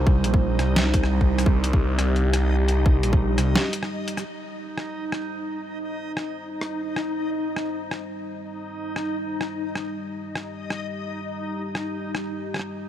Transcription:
0.00 0.23 C2 loud
0.00 4.21 G3 medium
0.00 4.21 D#4 medium
0.00 4.24 D#4 medium
0.00 1.45 C5 loud
0.07 kick loud
0.24 0.58 A#1 loud
0.24 closed hi-hat medium
0.34 kick loud
0.59 1.10 C2 loud
0.59 cross-stick medium
0.59 closed hi-hat medium
0.76 snare loud
0.76 closed hi-hat soft
0.94 kick loud
0.94 closed hi-hat medium
1.04 cross-stick medium
1.11 1.45 C2 loud
1.21 kick medium
1.38 cross-stick medium
1.38 closed hi-hat medium
1.38 shaker soft
1.46 1.97 C2 loud
1.46 4.24 G4 loud
1.46 kick loud
1.64 closed hi-hat medium
1.73 kick loud
1.98 3.02 C2 loud
1.98 cross-stick medium
1.98 closed hi-hat medium
2.16 closed hi-hat soft
2.33 cross-stick medium
2.33 closed hi-hat medium
2.68 closed hi-hat medium
2.86 kick loud
3.03 3.37 A#1 loud
3.03 closed hi-hat medium
3.13 kick loud
3.38 3.55 C2 loud
3.38 cross-stick medium
3.38 closed hi-hat medium
3.38 shaker soft
3.56 snare loud
3.56 closed hi-hat soft
3.73 closed hi-hat medium
3.83 cross-stick medium
4.08 closed hi-hat medium
4.17 cross-stick medium
4.17 shaker soft
4.25 12.89 G3 medium
4.25 12.89 D#4 medium
4.25 9.81 C5 medium
4.78 cross-stick soft
5.12 cross-stick medium
6.17 cross-stick soft
6.61 cross-stick soft
6.96 cross-stick soft
7.56 cross-stick soft
7.91 cross-stick soft
8.96 cross-stick soft
9.41 cross-stick soft
9.75 cross-stick soft
9.83 12.89 G4 medium
10.35 cross-stick soft
10.70 cross-stick soft
11.75 cross-stick medium
12.15 cross-stick soft
12.54 cross-stick soft
12.56 cross-stick soft
12.59 cross-stick soft

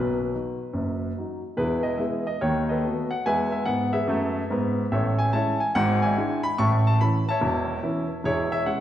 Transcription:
0.00 0.27 B1 medium
0.00 0.27 B2 medium
0.00 1.17 B4 medium
0.34 0.57 F#3 soft
0.34 0.56 D#4 soft
0.34 0.57 F#4 soft
0.73 1.09 F#1 medium
0.73 1.09 F#2 medium
1.17 1.39 F#3 soft
1.17 1.41 D#4 soft
1.17 1.41 F#4 soft
1.57 1.93 E1 medium
1.57 1.93 E2 medium
1.57 1.84 E4 medium
1.57 1.84 G#4 medium
1.57 1.85 B4 medium
1.83 1.98 D#5 medium
1.98 2.22 G#3 soft
1.98 2.22 B3 soft
1.98 2.22 E4 soft
1.98 2.25 G#4 soft
1.98 2.25 B4 soft
1.98 2.26 E5 medium
2.27 2.41 D#5 medium
2.41 2.77 D#2 medium
2.41 2.77 D#3 medium
2.41 2.69 C#5 medium
2.69 3.08 A4 medium
2.69 3.09 B4 medium
2.69 3.10 D#5 medium
2.84 3.07 A3 soft
2.84 3.08 B3 soft
2.84 3.08 F#4 medium
3.11 3.25 F#5 medium
3.26 3.58 E2 medium
3.26 3.59 G#3 medium
3.26 3.51 B4 medium
3.26 3.51 E5 medium
3.26 3.53 G#5 medium
3.52 3.66 E5 medium
3.65 3.99 G#2 medium
3.65 4.00 B3 medium
3.65 3.93 F#5 medium
3.93 4.87 G#4 medium
3.93 4.87 B4 medium
3.93 4.90 E5 medium
4.07 4.41 F#2 medium
4.07 4.42 A3 medium
4.50 4.83 G#2 medium
4.50 4.84 B3 medium
4.92 5.27 A1 medium
4.92 5.27 A2 medium
4.92 5.17 A4 medium
4.92 5.18 C#5 medium
4.92 5.19 E5 medium
5.19 5.33 G#5 medium
5.33 5.56 G#3 soft
5.33 5.57 C#4 soft
5.33 5.56 E4 soft
5.33 5.59 C#5 medium
5.33 5.59 E5 medium
5.33 5.60 A5 medium
5.60 5.74 G#5 medium
5.75 6.10 G#1 medium
5.75 6.11 G#2 loud
5.75 6.02 F#5 loud
6.02 6.41 D5 medium
6.02 6.41 E5 medium
6.02 6.43 G#5 medium
6.17 6.40 G#3 medium
6.17 6.40 D4 medium
6.17 6.40 E4 medium
6.43 6.57 B5 loud
6.58 6.93 A1 medium
6.58 6.93 A2 medium
6.58 6.84 E5 medium
6.58 6.84 A5 medium
6.58 6.85 C#6 loud
6.87 7.00 A5 loud
7.01 7.23 E3 soft
7.01 7.24 C#4 soft
7.01 7.24 E4 soft
7.01 7.27 B5 loud
7.29 8.22 C#5 medium
7.29 8.22 E5 medium
7.29 8.25 A5 loud
7.41 7.76 E1 medium
7.41 7.76 E2 medium
7.83 8.06 E3 medium
7.83 8.06 C#4 medium
7.83 8.06 E4 medium
8.24 8.59 E1 medium
8.24 8.59 E2 medium
8.24 8.50 E4 medium
8.24 8.50 G#4 medium
8.24 8.52 C#5 loud
8.52 8.66 E5 loud
8.66 8.80 G#3 medium
8.66 8.80 C#4 medium
8.66 8.80 F#5 medium

